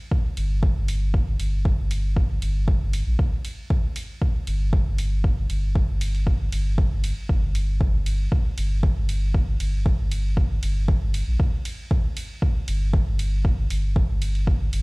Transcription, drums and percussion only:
0.11 kick
0.37 open hi-hat, ride
0.63 kick
0.88 open hi-hat, ride
1.14 kick
1.40 open hi-hat, ride
1.65 kick
1.91 open hi-hat, ride
2.17 kick
2.42 open hi-hat, ride
2.68 kick
2.93 open hi-hat, ride
3.19 kick
3.45 open hi-hat, ride
3.70 kick
3.96 open hi-hat, ride
4.22 kick
4.47 open hi-hat, ride
4.73 kick
4.98 open hi-hat, ride
5.24 kick
5.50 open hi-hat, ride
5.75 kick
6.01 open hi-hat, ride
6.15 open hi-hat
6.27 kick
6.52 open hi-hat, ride
6.78 kick
7.04 open hi-hat, ride
7.29 kick
7.55 open hi-hat, ride
7.81 kick
8.06 open hi-hat, ride
8.32 kick
8.58 open hi-hat, ride
8.83 kick
9.09 open hi-hat, ride
9.34 kick
9.60 open hi-hat, ride
9.86 kick
10.11 open hi-hat, ride
10.37 kick
10.63 open hi-hat, ride
10.88 kick
11.14 open hi-hat, ride
11.40 kick
11.65 open hi-hat, ride
11.91 kick
12.17 open hi-hat, ride
12.42 kick
12.68 open hi-hat, ride
12.93 kick
13.19 open hi-hat, ride
13.45 kick
13.70 open hi-hat, ride
13.96 kick
14.22 open hi-hat, ride
14.35 open hi-hat
14.47 kick
14.73 open hi-hat, ride

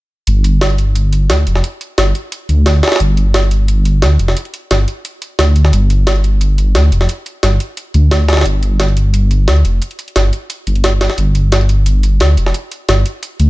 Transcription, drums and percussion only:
0.27 closed hi-hat
0.44 closed hi-hat
0.61 snare, closed hi-hat
0.70 closed hi-hat
0.78 closed hi-hat
0.95 closed hi-hat
1.13 closed hi-hat
1.30 snare, closed hi-hat
1.47 closed hi-hat
1.55 snare
1.64 closed hi-hat
1.81 closed hi-hat
1.98 snare, closed hi-hat
2.15 closed hi-hat
2.32 closed hi-hat
2.49 closed hi-hat
2.66 snare, closed hi-hat, open hi-hat
2.83 snare, closed hi-hat
2.88 snare, closed hi-hat
2.92 snare, closed hi-hat
2.96 snare, closed hi-hat
3.00 closed hi-hat
3.17 closed hi-hat
3.34 snare, closed hi-hat
3.43 closed hi-hat
3.51 closed hi-hat
3.68 closed hi-hat
3.85 closed hi-hat
4.02 snare, closed hi-hat
4.19 closed hi-hat
4.28 snare
4.37 closed hi-hat
4.45 closed hi-hat
4.54 closed hi-hat
4.71 snare, closed hi-hat
4.88 closed hi-hat
5.05 closed hi-hat
5.22 closed hi-hat
5.39 snare, closed hi-hat, open hi-hat
5.56 closed hi-hat
5.65 snare, closed hi-hat
5.73 closed hi-hat
5.90 closed hi-hat
6.07 snare, closed hi-hat
6.16 closed hi-hat
6.24 closed hi-hat
6.41 closed hi-hat
6.58 closed hi-hat
6.75 snare, closed hi-hat
6.92 closed hi-hat
7.01 snare
7.09 closed hi-hat
7.26 closed hi-hat
7.43 snare, closed hi-hat
7.60 closed hi-hat
7.77 closed hi-hat
7.94 closed hi-hat
8.11 snare, closed hi-hat, open hi-hat
8.29 snare, closed hi-hat
8.33 snare, closed hi-hat
8.37 snare, closed hi-hat
8.41 snare, closed hi-hat
8.46 closed hi-hat
8.63 closed hi-hat
8.80 snare, closed hi-hat
8.88 closed hi-hat
8.97 closed hi-hat
9.14 closed hi-hat
9.31 closed hi-hat
9.48 snare, closed hi-hat
9.56 closed hi-hat
9.65 closed hi-hat
9.82 closed hi-hat
9.91 closed hi-hat
9.99 closed hi-hat
10.08 closed hi-hat
10.16 snare, closed hi-hat
10.33 closed hi-hat
10.50 closed hi-hat
10.67 closed hi-hat
10.76 closed hi-hat
10.84 snare, closed hi-hat
11.01 snare, closed hi-hat
11.10 snare
11.18 closed hi-hat
11.35 closed hi-hat
11.52 snare, closed hi-hat
11.61 closed hi-hat
11.69 closed hi-hat
11.86 closed hi-hat
12.03 closed hi-hat
12.20 snare, closed hi-hat
12.37 closed hi-hat
12.46 snare
12.54 closed hi-hat
12.72 closed hi-hat
12.89 snare, closed hi-hat
13.06 closed hi-hat
13.23 closed hi-hat
13.40 closed hi-hat

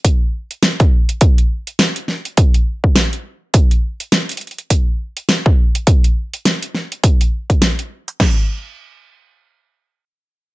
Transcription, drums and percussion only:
0.05 kick, closed hi-hat
0.51 closed hi-hat
0.63 snare, closed hi-hat
0.80 kick, closed hi-hat
1.09 closed hi-hat
1.21 kick, closed hi-hat
1.38 closed hi-hat
1.67 closed hi-hat
1.79 snare, closed hi-hat
1.96 closed hi-hat
2.08 snare
2.25 closed hi-hat
2.37 kick, closed hi-hat
2.54 closed hi-hat
2.84 kick
2.96 snare, closed hi-hat
3.13 closed hi-hat
3.54 kick, closed hi-hat
3.71 closed hi-hat
4.00 closed hi-hat
4.12 snare, closed hi-hat
4.29 closed hi-hat
4.32 closed hi-hat
4.37 closed hi-hat
4.41 closed hi-hat
4.47 closed hi-hat
4.51 closed hi-hat
4.58 closed hi-hat
4.70 kick, closed hi-hat
5.17 closed hi-hat
5.29 snare, closed hi-hat
5.46 kick
5.75 closed hi-hat
5.87 kick, closed hi-hat
6.04 closed hi-hat
6.34 closed hi-hat
6.45 snare, closed hi-hat
6.63 closed hi-hat
6.75 snare
6.92 closed hi-hat
7.04 kick, closed hi-hat
7.21 closed hi-hat
7.50 kick, closed hi-hat
7.62 snare, closed hi-hat
7.79 closed hi-hat
8.08 closed hi-hat
8.20 kick, snare, crash

